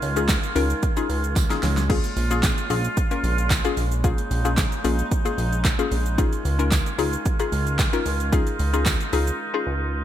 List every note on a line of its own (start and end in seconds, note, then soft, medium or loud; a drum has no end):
0.00 0.39 C#2 medium
0.00 1.86 D#3 medium
0.00 1.86 G#3 medium
0.00 1.86 C#4 medium
0.00 1.86 F4 medium
0.00 open hi-hat medium
0.00 shaker medium
0.16 0.45 C#4 medium
0.16 0.45 D#4 medium
0.16 0.45 F4 medium
0.16 0.45 G#4 medium
0.16 closed hi-hat medium
0.16 shaker medium
0.29 kick loud
0.29 snare loud
0.29 clap loud
0.29 closed hi-hat medium
0.29 tambourine loud
0.29 shaker medium
0.43 closed hi-hat soft
0.43 shaker soft
0.55 0.74 C#2 medium
0.55 0.85 C#4 medium
0.55 0.85 D#4 medium
0.55 0.85 F4 medium
0.55 0.85 A#4 loud
0.55 open hi-hat medium
0.55 shaker medium
0.70 closed hi-hat medium
0.70 shaker medium
0.83 kick loud
0.83 closed hi-hat medium
0.83 shaker medium
0.97 1.35 C#4 medium
0.97 1.35 D#4 medium
0.97 1.35 F4 medium
0.97 1.35 G#4 medium
0.97 closed hi-hat medium
0.97 shaker medium
1.09 1.46 C#2 medium
1.09 open hi-hat medium
1.09 shaker medium
1.24 closed hi-hat soft
1.24 shaker medium
1.36 kick loud
1.36 snare medium
1.36 closed hi-hat medium
1.36 tambourine medium
1.36 shaker medium
1.50 1.79 C#4 medium
1.50 1.79 D#4 medium
1.50 1.79 F4 medium
1.50 1.79 G#4 medium
1.50 snare medium
1.50 closed hi-hat medium
1.50 shaker medium
1.63 2.00 C#2 medium
1.63 snare loud
1.63 open hi-hat medium
1.63 shaker medium
1.77 snare medium
1.77 closed hi-hat soft
1.77 shaker medium
1.89 6.14 C#3 medium
1.89 10.04 G#3 medium
1.89 2.19 A#3 medium
1.89 6.14 A#3 medium
1.89 2.19 C#4 medium
1.89 2.19 F4 medium
1.89 3.87 F4 medium
1.89 2.19 G#4 loud
1.89 kick loud
1.89 crash medium
2.04 closed hi-hat medium
2.04 shaker medium
2.17 2.53 A#1 medium
2.17 open hi-hat medium
2.17 shaker medium
2.31 2.59 A#3 medium
2.31 2.59 C#4 medium
2.31 2.60 F4 medium
2.31 2.60 G#4 medium
2.31 closed hi-hat medium
2.31 shaker medium
2.43 kick loud
2.43 snare loud
2.43 clap loud
2.43 closed hi-hat medium
2.43 tambourine loud
2.43 shaker medium
2.58 closed hi-hat soft
2.58 shaker soft
2.70 2.88 A#1 loud
2.70 2.99 A#3 medium
2.70 2.99 C#4 medium
2.70 2.99 F4 medium
2.70 2.99 G#4 medium
2.70 open hi-hat medium
2.70 shaker medium
2.84 closed hi-hat medium
2.84 shaker medium
2.97 kick loud
2.97 closed hi-hat medium
2.97 shaker medium
3.11 3.49 A#3 medium
3.11 3.49 C#4 medium
3.11 3.49 F4 medium
3.11 3.49 A#4 loud
3.11 closed hi-hat medium
3.11 shaker medium
3.24 3.60 A#1 loud
3.24 open hi-hat medium
3.24 shaker medium
3.38 closed hi-hat soft
3.38 shaker medium
3.50 kick loud
3.50 snare medium
3.50 clap loud
3.50 closed hi-hat medium
3.50 tambourine medium
3.50 shaker medium
3.65 3.93 A#3 medium
3.65 3.93 C#4 medium
3.65 3.94 F4 medium
3.65 3.94 G#4 loud
3.65 closed hi-hat medium
3.65 shaker medium
3.77 4.14 A#1 medium
3.77 open hi-hat medium
3.77 shaker medium
3.92 closed hi-hat soft
3.92 shaker medium
4.04 4.33 A#3 medium
4.04 4.33 C#4 medium
4.04 6.16 D#4 medium
4.04 4.33 F4 medium
4.04 4.33 G#4 loud
4.04 kick loud
4.04 closed hi-hat medium
4.04 shaker medium
4.18 closed hi-hat medium
4.18 shaker medium
4.31 4.67 A#1 medium
4.31 open hi-hat medium
4.31 shaker medium
4.45 4.74 A#3 medium
4.45 4.74 C#4 medium
4.45 4.74 F4 medium
4.45 4.74 G#4 medium
4.45 closed hi-hat medium
4.45 shaker medium
4.57 kick loud
4.57 snare loud
4.57 clap loud
4.57 closed hi-hat medium
4.57 tambourine loud
4.57 shaker medium
4.72 closed hi-hat medium
4.72 shaker soft
4.84 5.03 A#1 medium
4.84 5.13 A#3 medium
4.84 5.13 C#4 medium
4.84 5.13 F4 medium
4.84 5.14 G#4 medium
4.84 open hi-hat loud
4.84 shaker medium
4.99 closed hi-hat medium
4.99 shaker medium
5.11 kick loud
5.11 closed hi-hat medium
5.11 shaker medium
5.25 5.63 A#3 medium
5.25 5.63 C#4 medium
5.25 5.63 F4 medium
5.25 5.63 G#4 loud
5.25 closed hi-hat medium
5.25 shaker medium
5.38 5.75 A#1 medium
5.38 open hi-hat medium
5.38 shaker medium
5.53 closed hi-hat soft
5.53 shaker medium
5.65 kick loud
5.65 snare loud
5.65 clap loud
5.65 closed hi-hat medium
5.65 tambourine medium
5.65 shaker medium
5.79 6.08 A#3 medium
5.79 6.08 C#4 medium
5.79 6.08 F4 medium
5.79 6.08 G#4 loud
5.79 closed hi-hat medium
5.79 shaker medium
5.92 6.28 A#1 medium
5.92 open hi-hat medium
5.92 shaker medium
6.06 closed hi-hat soft
6.06 shaker medium
6.18 10.04 D#3 medium
6.18 6.47 C#4 medium
6.18 8.31 C#4 medium
6.18 6.47 D#4 medium
6.18 6.47 F4 medium
6.18 10.04 F4 medium
6.18 6.47 G#4 loud
6.18 kick loud
6.18 closed hi-hat medium
6.18 shaker medium
6.33 closed hi-hat medium
6.33 shaker medium
6.45 6.82 C#2 medium
6.45 open hi-hat medium
6.45 shaker medium
6.59 6.88 C#4 medium
6.59 6.88 D#4 medium
6.59 6.88 F4 medium
6.59 6.88 A#4 loud
6.59 closed hi-hat medium
6.59 shaker medium
6.71 kick loud
6.71 snare loud
6.71 clap loud
6.71 closed hi-hat medium
6.71 tambourine loud
6.71 shaker medium
6.86 closed hi-hat medium
6.86 shaker medium
6.98 7.17 C#2 medium
6.98 7.28 C#4 medium
6.98 7.28 D#4 medium
6.98 7.28 F4 medium
6.98 7.28 G#4 loud
6.98 open hi-hat medium
6.98 shaker medium
7.13 closed hi-hat medium
7.13 shaker medium
7.26 kick loud
7.26 closed hi-hat medium
7.26 shaker medium
7.39 7.77 C#4 medium
7.39 7.77 D#4 medium
7.39 7.78 F4 medium
7.39 7.78 G#4 loud
7.39 closed hi-hat medium
7.39 shaker medium
7.52 7.89 C#2 medium
7.52 open hi-hat medium
7.52 shaker medium
7.67 closed hi-hat soft
7.67 shaker medium
7.79 kick loud
7.79 snare medium
7.79 clap loud
7.79 closed hi-hat medium
7.79 tambourine medium
7.79 shaker medium
7.93 8.22 C#4 medium
7.93 8.22 D#4 medium
7.93 8.22 F4 medium
7.93 8.22 A#4 loud
7.93 closed hi-hat medium
7.93 shaker medium
8.06 8.42 C#2 medium
8.06 open hi-hat medium
8.06 shaker medium
8.20 closed hi-hat medium
8.20 shaker medium
8.32 8.61 C#4 medium
8.32 8.62 D#4 medium
8.32 10.04 D#4 medium
8.32 8.62 F4 medium
8.32 8.62 G#4 loud
8.32 kick loud
8.32 closed hi-hat medium
8.32 shaker medium
8.47 closed hi-hat medium
8.47 shaker medium
8.59 8.96 C#2 medium
8.59 open hi-hat medium
8.59 shaker medium
8.73 9.02 C#4 medium
8.73 9.02 D#4 medium
8.73 9.02 F4 medium
8.73 9.02 G#4 medium
8.73 closed hi-hat medium
8.73 shaker medium
8.86 kick loud
8.86 snare loud
8.86 clap loud
8.86 closed hi-hat medium
8.86 tambourine loud
8.86 shaker medium
9.00 closed hi-hat soft
9.00 shaker soft
9.13 9.31 C#2 medium
9.13 9.42 C#4 medium
9.13 9.42 D#4 medium
9.13 9.42 F4 medium
9.13 9.42 G#4 loud
9.13 open hi-hat loud
9.13 shaker medium
9.27 closed hi-hat medium
9.27 shaker medium
9.54 9.92 C#4 medium
9.54 9.92 D#4 medium
9.54 9.92 F4 medium
9.54 9.92 G#4 loud
9.67 10.03 C#2 loud